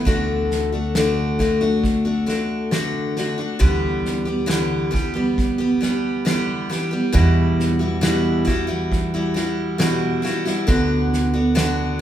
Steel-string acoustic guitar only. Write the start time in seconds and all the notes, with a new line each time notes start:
0.05 D3 A3 D4 F#4
0.72 A3 D4 F#4
0.95 D3 A3 D4 F#4
1.39 D3 A3 D4 F#4
1.61 A3 D4 F#4
2.05 A3 D4 F#4
2.26 D3 A3 D4 F#4
2.71 D3 A3 D4 F#4
3.17 D3 A3 D4 F#4
3.38 A3 D4 F#4
3.59 D3 E3 G3 B3 G4
4.25 G3 B3 G4
4.46 D3 E3 G3 B3 G4
4.91 E3 G3 B3 G4
5.14 G3 B3 G4
5.58 G3 B3 G4
5.81 E3 G3 B3 G4
6.25 D3 E3 G3 B3 G4
6.69 E3 G3 B3 G4
6.91 G3 B3 G4
7.12 E2 B2 E3 G3 E4 F#4
7.79 E3 G3 E4 F#4
8.01 E2 B2 E3 G3 E4 F#4
8.45 E3 G3 E4 F#4
8.67 E3 G3 E4 F#4
9.14 E3 G3 E4 F#4
9.34 E3 G3 E4 F#4
9.78 E2 B2 E3 G3 E4 F#4
10.22 E3 G3 E4 F#4
10.45 E3 G3 E4 F#4
10.67 D3 B3 D4 F#4
11.34 B3 D4 F#4
11.55 D3 B3 D4 F#4